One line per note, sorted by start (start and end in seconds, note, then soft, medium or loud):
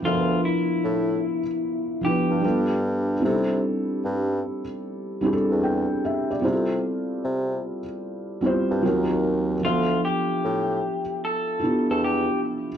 0.00 1.40 F3 medium
0.00 0.03 B3 medium
0.00 1.40 B3 medium
0.00 0.05 D4 medium
0.00 2.05 E4 medium
0.00 2.44 F4 medium
0.00 0.14 B4 medium
0.05 0.42 D2 loud
0.05 1.41 D4 medium
0.05 0.40 F4 medium
0.05 0.14 A#4 medium
0.05 1.42 E5 medium
0.14 1.46 B4 medium
0.45 2.00 E4 medium
0.85 1.22 A2 medium
2.01 2.42 F3 medium
2.01 2.40 B3 medium
2.01 2.41 D4 medium
2.01 2.66 G4 medium
2.05 2.44 E4 medium
2.05 2.45 B4 medium
2.31 2.43 G2 medium
2.40 3.12 G3 medium
2.40 3.13 B3 medium
2.40 3.14 D4 medium
2.44 3.20 G2 loud
2.44 3.14 F4 medium
2.44 3.15 A4 medium
3.20 4.59 G3 medium
3.20 4.59 C4 medium
3.20 4.60 D4 medium
3.24 3.62 C3 loud
3.24 3.32 D#4 medium
3.24 4.62 A4 loud
3.30 4.64 E4 medium
4.05 4.42 G2 loud
5.21 6.28 G3 medium
5.21 6.29 C4 medium
5.21 6.29 D4 medium
5.25 6.30 E4 medium
5.25 5.33 G#4 medium
5.33 6.34 A4 loud
5.51 5.88 E2 medium
5.63 6.01 G5 medium
6.05 6.29 E5 medium
6.31 6.68 D5 medium
6.41 6.82 C3 loud
6.41 7.79 G3 medium
6.41 7.80 C4 medium
6.41 7.80 E4 medium
6.45 7.81 F4 medium
6.45 6.53 G#4 medium
6.53 7.85 A4 medium
7.25 7.62 C3 medium
8.41 8.82 G3 medium
8.41 8.82 C4 medium
8.41 8.84 E4 medium
8.45 8.84 F4 medium
8.45 8.85 C5 loud
8.71 8.83 G2 medium
8.82 9.60 D#2 loud
8.82 9.53 F#3 medium
8.82 9.54 C4 medium
8.82 9.55 D#4 medium
8.82 9.55 F4 medium
8.88 9.56 A#4 medium
9.61 10.02 D2 loud
9.61 10.99 F3 medium
9.61 11.00 B3 medium
9.61 11.00 D4 medium
9.65 10.00 F4 loud
9.65 11.02 A4 medium
9.65 11.01 E5 medium
10.05 11.20 G4 medium
10.45 10.82 A2 medium
11.25 11.86 A4 medium
11.60 12.68 B3 medium
11.60 12.68 D4 medium
11.60 12.69 E4 medium
11.60 12.67 F4 medium
11.65 12.70 G4 medium
11.90 12.28 E2 medium
11.90 12.03 A4 medium
12.04 12.40 G4 medium